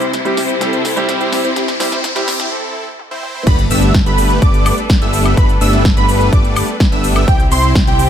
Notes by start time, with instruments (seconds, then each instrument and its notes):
Already playing: string section C3 G3 E4 C5, supersaw synth C4 E4 C5, riser
0.02 closed hi-hat
0.13 snare, closed hi-hat
0.25 grand piano G3 C4 E4 G4, supersaw synth C4 E4 G4, closed hi-hat
0.37 snare, open hi-hat
0.49 closed hi-hat
0.60 grand piano G3 C4 E4 G4, supersaw synth C4 E4 A4, snare, closed hi-hat
0.73 closed hi-hat
0.85 snare, open hi-hat
0.96 grand piano G3 C4 E4 G4, supersaw synth C4 E4 C5, closed hi-hat
1.09 snare, closed hi-hat
1.21 supersaw synth C4 E4 G4, closed hi-hat
1.32 grand piano G3 C4 E4 G4, snare, open hi-hat
1.44 supersaw synth C4 E4 C5, closed hi-hat
1.56 supersaw synth C4 E4 G4, snare, closed hi-hat
1.68 snare, closed hi-hat
1.80 grand piano G3 C4 E4 G4, supersaw synth C4 E4 C5, snare, open hi-hat
1.92 snare, closed hi-hat
2.04 snare, closed hi-hat
2.15 grand piano G3 C4 E4 G4, supersaw synth C4 E4 G4, snare, closed hi-hat
2.28 snare, open hi-hat
2.40 snare, closed hi-hat
2.52 supersaw synth C4 E4 A4
2.99 high tom
3.11 supersaw synth C4 E4 C5, high tom
3.23 mid tom
3.35 mid tom
3.47 analog synth bass G1, string section G3 D4 A4 B4, supersaw synth A3 B3 D4 G4 B4, digital synth lead B5, kick, closed hi-hat, crash, impact, cabasa
3.59 closed hi-hat, cabasa
3.71 analog synth bass G1, supersaw synth A3 B3 D4 G4 E5, digital synth lead E6, open hi-hat, cabasa
3.83 closed hi-hat, cabasa
3.94 kick, snare, closed hi-hat, cabasa
4.06 analog synth bass G1, supersaw synth A3 B3 D4 G4 B4, digital synth lead B5, closed hi-hat, cabasa
4.18 open hi-hat, cabasa
4.30 closed hi-hat, cabasa
4.42 analog synth bass G1, supersaw synth A3 B3 D4 G4 D5, digital synth lead D6, kick, closed hi-hat, cabasa
4.54 closed hi-hat
4.66 open hi-hat, cabasa, high woodblock
4.78 closed hi-hat, cabasa
4.90 kick, snare, closed hi-hat, cabasa
5.02 analog synth bass G1, supersaw synth A3 B3 D4 G4 E5, digital synth lead E6, closed hi-hat
5.14 open hi-hat, cabasa
5.25 closed hi-hat, cabasa, high woodblock
5.37 analog synth bass G1, supersaw synth A3 B3 D4 G4 B4, digital synth lead B5, kick, closed hi-hat, cabasa
5.49 closed hi-hat, cabasa
5.61 analog synth bass G1, supersaw synth A3 B3 D4 G4 E5, digital synth lead E6, open hi-hat, cabasa
5.73 snare, closed hi-hat, cabasa
5.85 kick, snare, closed hi-hat, cabasa
5.97 analog synth bass G1, supersaw synth A3 B3 D4 G4 B4, digital synth lead B5, closed hi-hat, cabasa
6.09 open hi-hat, cabasa
6.21 closed hi-hat, cabasa
6.33 analog synth bass G1, supersaw synth A3 B3 D4 G4 D5, digital synth lead D6, kick, closed hi-hat, cabasa
6.45 closed hi-hat
6.56 open hi-hat, cabasa, high woodblock
6.68 closed hi-hat, cabasa
6.80 kick, snare, closed hi-hat, cabasa
6.92 analog synth bass G1, supersaw synth A3 B3 D4 G4 E5, digital synth lead E6, closed hi-hat
7.04 open hi-hat, cabasa
7.16 closed hi-hat, cabasa, high woodblock
7.28 analog synth bass C2, string section C3 C4 E4 G4, supersaw synth C4 E4 G4, digital synth lead G5, kick, closed hi-hat, cabasa
7.40 closed hi-hat, cabasa
7.52 analog synth bass C2, supersaw synth C4 E4 C5, digital synth lead C6, open hi-hat, cabasa
7.64 closed hi-hat, cabasa
7.75 kick, snare, closed hi-hat, cabasa
7.87 analog synth bass C2, supersaw synth C4 E4 G4, digital synth lead G5, closed hi-hat, cabasa
7.99 open hi-hat, cabasa